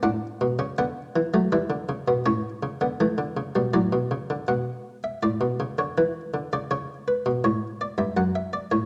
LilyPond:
<<
  \new Staff \with { instrumentName = "Harpsichord" } { \time 3/4 \key b \phrygian \tempo 4 = 81 fis''4 fis''4 e''4 | cis''2 d''4 | fis''8. e''16 d''8. cis''16 b'8. d''16 | cis''8 b'8 cis''8 d''16 e''16 fis''16 e''16 d''16 cis''16 | }
  \new Staff \with { instrumentName = "Harpsichord" } { \clef bass \time 3/4 \key b \phrygian << { d'8. cis'16 b8. a16 g8. b16 | cis'8. b16 a8. g16 fis4 | r2. | r2. | } \\ { a,8 b,16 cis16 d8 e16 fis16 e16 d16 cis16 b,16 | a,8 cis16 d16 e16 d16 cis16 b,16 a,16 b,16 cis16 d16 | b,4 a,16 b,16 cis16 d16 e8 d16 cis16 | cis8. b,16 a,8. g,16 fis,8. a,16 | } >> }
>>